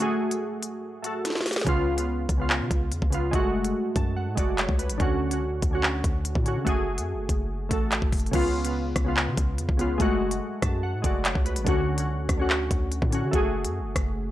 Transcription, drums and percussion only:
0.31 closed hi-hat
0.62 closed hi-hat
1.04 closed hi-hat
1.25 snare, closed hi-hat
1.30 snare
1.35 snare
1.41 snare
1.46 snare, closed hi-hat, open hi-hat
1.51 snare, closed hi-hat
1.56 snare, closed hi-hat
1.61 snare
1.67 kick, closed hi-hat
1.98 closed hi-hat
2.29 kick, closed hi-hat
2.50 clap
2.71 kick, closed hi-hat
2.92 closed hi-hat
3.02 kick
3.12 closed hi-hat
3.33 kick, closed hi-hat
3.65 closed hi-hat
3.96 kick, closed hi-hat
4.37 kick, closed hi-hat
4.58 clap, closed hi-hat
4.69 kick
4.79 closed hi-hat
4.90 closed hi-hat
5.00 kick, closed hi-hat
5.31 closed hi-hat
5.62 kick, closed hi-hat
5.83 clap
6.04 kick, closed hi-hat
6.25 closed hi-hat
6.35 kick
6.46 closed hi-hat
6.67 kick, closed hi-hat
6.98 closed hi-hat
7.29 kick, closed hi-hat
7.71 kick, closed hi-hat
7.92 clap, closed hi-hat
8.02 kick
8.12 kick, closed hi-hat, open hi-hat
8.19 closed hi-hat
8.26 closed hi-hat
8.33 kick, closed hi-hat, crash
8.65 closed hi-hat
8.96 kick, cross-stick, closed hi-hat
9.17 clap
9.37 kick, closed hi-hat
9.58 closed hi-hat
9.69 kick
9.79 closed hi-hat
10.00 kick, closed hi-hat
10.31 closed hi-hat
10.62 kick, cross-stick, closed hi-hat
11.04 kick, closed hi-hat
11.25 clap, closed hi-hat
11.35 kick
11.46 closed hi-hat
11.56 closed hi-hat
11.67 kick, closed hi-hat
11.98 closed hi-hat
12.29 kick, cross-stick, closed hi-hat
12.50 clap
12.71 kick, closed hi-hat
12.92 closed hi-hat
13.02 kick
13.12 closed hi-hat
13.33 kick, closed hi-hat
13.65 closed hi-hat
13.96 kick, cross-stick, closed hi-hat

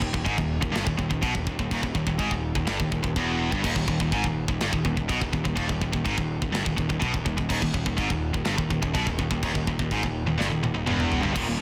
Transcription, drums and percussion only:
0.02 kick
0.14 kick
0.26 kick, china
0.38 kick
0.62 kick
0.75 snare, china
0.87 kick
0.99 kick
1.11 kick
1.23 kick, china
1.35 kick
1.47 kick
1.59 kick
1.71 kick, china
1.83 kick
1.95 kick
2.07 kick
2.19 kick, china
2.31 kick
2.55 kick
2.67 snare, china
2.80 kick
2.92 kick
3.04 kick
3.16 kick, china
3.52 kick
3.64 kick, china, crash
3.76 kick
3.88 kick
4.00 kick
4.12 kick, china
4.24 kick
4.48 kick
4.60 snare, china
4.73 kick
4.85 kick
4.97 kick
5.09 kick, china
5.21 kick
5.33 kick
5.45 kick
5.57 kick, china
5.69 kick
5.81 kick
5.93 kick
6.06 kick, china
6.18 kick
6.42 kick
6.54 snare, china
6.66 kick
6.78 kick
6.90 kick
7.02 kick, china
7.14 kick
7.26 kick
7.38 kick
7.50 kick, china, crash
7.62 kick
7.74 kick
7.86 kick
7.98 kick, china
8.10 kick
8.34 kick
8.45 snare, china
8.58 kick
8.70 kick
8.83 kick
8.95 kick, china
9.07 kick
9.19 kick
9.31 kick
9.43 kick, china
9.55 kick
9.67 kick
9.79 kick
9.91 kick, china
10.03 kick
10.41 snare
10.64 high tom
10.87 mid tom
11.00 mid tom
11.12 floor tom
11.23 floor tom
11.36 kick, crash, china

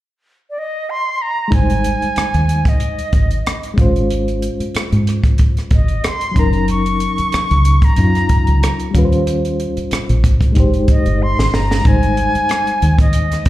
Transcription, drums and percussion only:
1.52 kick, closed hi-hat
1.70 closed hi-hat
1.84 closed hi-hat
2.02 closed hi-hat
2.16 cross-stick, closed hi-hat
2.34 closed hi-hat
2.49 closed hi-hat
2.65 kick, closed hi-hat
2.80 closed hi-hat
2.99 closed hi-hat
3.13 kick, closed hi-hat
3.31 closed hi-hat
3.47 cross-stick, closed hi-hat
3.63 closed hi-hat
3.78 kick, closed hi-hat
3.96 closed hi-hat
4.10 closed hi-hat
4.28 closed hi-hat
4.42 closed hi-hat
4.60 closed hi-hat
4.75 cross-stick, closed hi-hat
4.92 closed hi-hat
5.07 cross-stick, closed hi-hat
5.24 kick, closed hi-hat
5.38 kick, closed hi-hat
5.57 cross-stick, closed hi-hat
5.71 kick, closed hi-hat
5.88 closed hi-hat
6.04 cross-stick, closed hi-hat
6.21 closed hi-hat
6.36 kick, closed hi-hat
6.53 closed hi-hat
6.68 closed hi-hat
6.86 closed hi-hat
7.00 closed hi-hat
7.18 closed hi-hat
7.32 cross-stick, closed hi-hat
7.51 closed hi-hat
7.65 closed hi-hat
7.82 kick, closed hi-hat
7.96 closed hi-hat
8.15 cross-stick, closed hi-hat
8.29 kick, closed hi-hat
8.47 closed hi-hat
8.63 cross-stick, closed hi-hat
8.80 closed hi-hat
8.95 kick, closed hi-hat
9.12 closed hi-hat
9.27 closed hi-hat
9.45 closed hi-hat
9.60 closed hi-hat
9.77 closed hi-hat
9.91 cross-stick, closed hi-hat
10.09 closed hi-hat
10.24 kick, closed hi-hat
10.41 kick, closed hi-hat
10.55 kick, closed hi-hat
10.74 closed hi-hat
10.88 kick, closed hi-hat
11.06 closed hi-hat
11.39 snare
11.54 snare
11.71 snare
11.85 kick, closed hi-hat
12.03 closed hi-hat
12.17 closed hi-hat
12.35 closed hi-hat
12.49 cross-stick, closed hi-hat
12.67 closed hi-hat
12.82 closed hi-hat
12.99 kick, closed hi-hat
13.13 closed hi-hat
13.32 cross-stick, closed hi-hat
13.46 kick, closed hi-hat

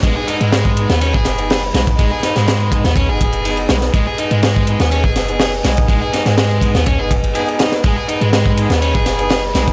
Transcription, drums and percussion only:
0.03 kick, closed hi-hat, crash, ride
0.28 closed hi-hat, ride
0.41 closed hi-hat
0.52 snare, closed hi-hat, ride
0.65 kick
0.77 closed hi-hat, ride
0.90 snare, closed hi-hat
1.01 closed hi-hat, ride
1.14 kick
1.25 snare, closed hi-hat, ride
1.38 closed hi-hat, ride
1.50 snare, closed hi-hat, open hi-hat
1.74 snare, closed hi-hat, ride
1.87 kick, closed hi-hat
1.99 kick, closed hi-hat, ride
2.23 snare, closed hi-hat, ride
2.36 snare, closed hi-hat
2.48 snare, closed hi-hat, ride
2.60 ride
2.72 kick, closed hi-hat, ride
2.84 snare, closed hi-hat
2.96 kick, closed hi-hat, ride
3.21 kick, closed hi-hat, ride
3.32 closed hi-hat, ride
3.45 closed hi-hat, ride
3.57 ride
3.69 snare, closed hi-hat, ride
3.81 snare, closed hi-hat
3.94 kick, closed hi-hat, ride
4.18 closed hi-hat, ride
4.31 closed hi-hat
4.42 snare, closed hi-hat, ride
4.56 kick
4.67 closed hi-hat, ride
4.80 snare, closed hi-hat
4.91 closed hi-hat, ride
5.04 kick
5.16 snare, closed hi-hat, ride
5.28 closed hi-hat, ride
5.40 snare, closed hi-hat, open hi-hat
5.65 snare, closed hi-hat, ride
5.77 kick, closed hi-hat
5.88 kick, closed hi-hat, ride
6.13 snare, closed hi-hat, ride
6.26 snare, closed hi-hat
6.38 snare, closed hi-hat, ride
6.51 ride
6.61 kick, closed hi-hat, ride
6.75 snare, closed hi-hat
6.86 kick, closed hi-hat, ride
7.11 kick, closed hi-hat, ride
7.24 closed hi-hat, ride
7.35 closed hi-hat, ride
7.48 ride
7.59 snare, closed hi-hat, ride
7.72 snare, closed hi-hat
7.84 kick, closed hi-hat, ride
8.08 closed hi-hat, ride
8.21 closed hi-hat
8.33 snare, closed hi-hat, ride
8.46 kick
8.57 closed hi-hat, ride
8.70 snare, closed hi-hat
8.82 closed hi-hat, ride
8.95 kick
9.06 snare, closed hi-hat, ride
9.19 closed hi-hat, ride
9.29 snare, closed hi-hat, open hi-hat
9.55 snare, closed hi-hat, ride
9.68 kick, closed hi-hat

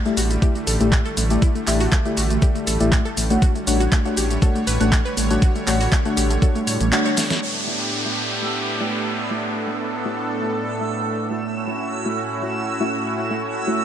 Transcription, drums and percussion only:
0.06 closed hi-hat, shaker
0.17 open hi-hat, shaker
0.31 closed hi-hat, shaker
0.42 kick, closed hi-hat, shaker
0.56 closed hi-hat, shaker
0.67 open hi-hat, shaker
0.81 closed hi-hat, shaker
0.92 kick, clap, closed hi-hat, shaker
1.06 closed hi-hat, shaker
1.17 open hi-hat, shaker
1.30 closed hi-hat, shaker
1.42 kick, closed hi-hat, shaker
1.55 closed hi-hat, shaker
1.67 clap, open hi-hat, shaker
1.80 open hi-hat, shaker
1.92 kick, clap, closed hi-hat, shaker
2.06 closed hi-hat, shaker
2.17 open hi-hat, shaker
2.30 closed hi-hat, shaker
2.42 kick, closed hi-hat, shaker
2.56 closed hi-hat, shaker
2.67 open hi-hat, shaker
2.81 closed hi-hat, shaker
2.92 kick, clap, closed hi-hat, shaker
3.06 closed hi-hat, shaker
3.17 open hi-hat, shaker
3.30 closed hi-hat, shaker
3.42 kick, closed hi-hat, shaker
3.56 closed hi-hat, shaker
3.67 open hi-hat, shaker
3.81 closed hi-hat, shaker
3.92 kick, clap, closed hi-hat, shaker
4.06 closed hi-hat, shaker
4.17 open hi-hat, shaker
4.31 closed hi-hat, shaker
4.42 kick, closed hi-hat, shaker
4.56 closed hi-hat, shaker
4.67 open hi-hat, shaker
4.81 closed hi-hat, shaker
4.92 kick, clap, closed hi-hat, shaker
5.06 closed hi-hat, shaker
5.17 open hi-hat, shaker
5.31 closed hi-hat, shaker
5.42 kick, closed hi-hat, shaker
5.56 closed hi-hat, shaker
5.67 clap, open hi-hat, shaker
5.81 open hi-hat, shaker
5.92 kick, clap, shaker
6.05 closed hi-hat, shaker
6.17 open hi-hat, shaker
6.30 closed hi-hat, shaker
6.42 kick, closed hi-hat, shaker
6.56 closed hi-hat, shaker
6.67 open hi-hat, shaker
6.81 closed hi-hat, shaker
6.92 clap, closed hi-hat, shaker
7.06 closed hi-hat, shaker
7.17 snare, open hi-hat, shaker
7.30 snare, closed hi-hat, shaker
11.17 shaker
11.31 shaker
11.42 shaker
11.67 shaker
12.17 shaker
12.42 shaker
12.67 shaker
12.92 shaker
13.17 shaker
13.67 shaker

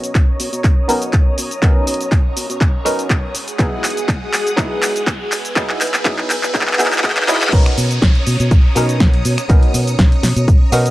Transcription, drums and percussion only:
0.04 closed hi-hat, shaker
0.15 kick, clap, closed hi-hat, shaker
0.40 open hi-hat, shaker
0.53 closed hi-hat, shaker
0.64 kick, clap, closed hi-hat, shaker
0.89 open hi-hat, shaker
1.02 closed hi-hat, shaker
1.13 kick, clap, closed hi-hat, shaker
1.38 open hi-hat, shaker
1.51 closed hi-hat, shaker
1.62 kick, clap, closed hi-hat, shaker
1.87 open hi-hat, shaker
1.94 closed hi-hat
2.01 closed hi-hat, shaker
2.12 kick, clap, closed hi-hat, shaker
2.37 open hi-hat, shaker
2.50 closed hi-hat, shaker
2.61 kick, clap, closed hi-hat, shaker
2.86 open hi-hat, shaker
2.99 closed hi-hat, shaker
3.10 kick, clap, closed hi-hat, shaker
3.35 open hi-hat, shaker
3.48 closed hi-hat, shaker
3.59 kick, clap, closed hi-hat, shaker
3.84 clap, open hi-hat, shaker
3.91 closed hi-hat
3.97 closed hi-hat, shaker
4.08 kick, clap, closed hi-hat, shaker
4.34 clap, open hi-hat, shaker
4.47 closed hi-hat, shaker
4.58 kick, clap, closed hi-hat, shaker
4.83 clap, open hi-hat, shaker
4.96 closed hi-hat, shaker
5.07 kick, clap, closed hi-hat, shaker
5.32 clap, open hi-hat, shaker
5.45 closed hi-hat, shaker
5.56 kick, clap, closed hi-hat, shaker
5.70 clap
5.81 clap, open hi-hat, shaker
5.87 closed hi-hat
5.94 clap, closed hi-hat, shaker
6.05 kick, clap, closed hi-hat, shaker
6.18 clap
6.30 clap, open hi-hat, shaker
6.43 clap, closed hi-hat, shaker
6.54 kick, clap, closed hi-hat, shaker
6.61 clap
6.67 clap
6.73 clap
6.79 clap, open hi-hat, shaker
6.86 clap
6.92 clap, closed hi-hat, shaker
6.98 clap
7.04 kick, clap, closed hi-hat, shaker
7.10 clap
7.17 clap
7.22 clap
7.28 clap, open hi-hat, shaker
7.35 clap
7.42 clap, closed hi-hat, shaker
7.47 clap
7.53 kick, closed hi-hat, crash, shaker
7.66 finger snap, closed hi-hat
7.78 open hi-hat, shaker
7.91 closed hi-hat, shaker
8.02 kick, snare, closed hi-hat, shaker
8.15 closed hi-hat
8.27 open hi-hat, shaker
8.40 closed hi-hat, shaker
8.51 kick, closed hi-hat, shaker
8.76 open hi-hat, shaker
8.89 closed hi-hat, shaker
9.00 kick, snare, closed hi-hat, shaker
9.13 closed hi-hat
9.25 open hi-hat, shaker
9.38 finger snap, closed hi-hat, shaker
9.50 kick, closed hi-hat, shaker
9.63 closed hi-hat
9.74 open hi-hat, shaker
9.87 closed hi-hat, shaker
9.99 kick, snare, closed hi-hat, shaker
10.12 closed hi-hat
10.23 snare, open hi-hat, shaker
10.37 closed hi-hat, shaker
10.48 kick, closed hi-hat, shaker
10.72 open hi-hat, shaker
10.86 closed hi-hat, shaker

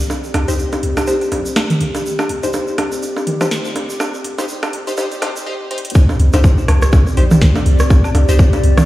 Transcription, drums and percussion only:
0.10 low bongo, shaker
0.24 shaker
0.34 open hi-hat, low bongo, high woodblock
0.48 closed hi-hat, shaker
0.59 shaker
0.73 closed hi-hat, low bongo, shaker
0.83 open hi-hat
0.97 closed hi-hat, low bongo, high woodblock, shaker
1.07 open hi-hat, shaker
1.21 closed hi-hat, shaker
1.32 open hi-hat, low bongo
1.46 open hi-hat, shaker
1.56 snare, low bongo, high woodblock, shaker
1.70 closed hi-hat, mid tom, shaker
1.81 open hi-hat
1.95 closed hi-hat, low bongo, shaker
2.06 shaker
2.19 low bongo, high woodblock, shaker
2.29 open hi-hat
2.43 closed hi-hat, shaker
2.53 low bongo, shaker
2.67 shaker
2.78 open hi-hat, low bongo, high woodblock
2.92 closed hi-hat, shaker
3.03 open hi-hat, shaker
3.16 low bongo, shaker
3.27 open hi-hat, mid tom
3.41 open hi-hat, mid tom, low bongo, high woodblock, shaker
3.51 snare, closed hi-hat, shaker
3.65 shaker
3.76 open hi-hat, low bongo
3.90 shaker
4.00 low bongo, high woodblock, shaker
4.14 shaker
4.24 open hi-hat
4.38 closed hi-hat, low bongo, shaker
4.48 shaker
4.63 closed hi-hat, low bongo, high woodblock, shaker
4.73 open hi-hat
4.87 closed hi-hat, shaker
4.97 open hi-hat, low bongo, shaker
5.12 closed hi-hat, shaker
5.22 open hi-hat, low bongo, high woodblock
5.36 open hi-hat, shaker
5.71 closed hi-hat
5.78 closed hi-hat
5.85 closed hi-hat
5.90 closed hi-hat
5.95 kick, shaker
6.09 low bongo, shaker
6.20 open hi-hat
6.33 closed hi-hat, low bongo, shaker
6.44 kick, shaker
6.58 shaker
6.68 cross-stick, open hi-hat, low bongo, high woodblock
6.82 cross-stick, closed hi-hat, shaker
6.93 kick, low bongo, shaker
7.07 shaker
7.17 open hi-hat
7.31 mid tom, low bongo, shaker
7.41 kick, snare, closed hi-hat, shaker
7.56 low bongo, shaker
7.66 open hi-hat
7.79 cross-stick, shaker
7.90 kick, low bongo, shaker
8.04 high woodblock, shaker
8.15 open hi-hat, low bongo
8.29 closed hi-hat, shaker
8.39 kick, shaker
8.53 closed hi-hat, low bongo, shaker
8.63 open hi-hat
8.77 cross-stick, closed hi-hat, mid tom, low bongo, shaker

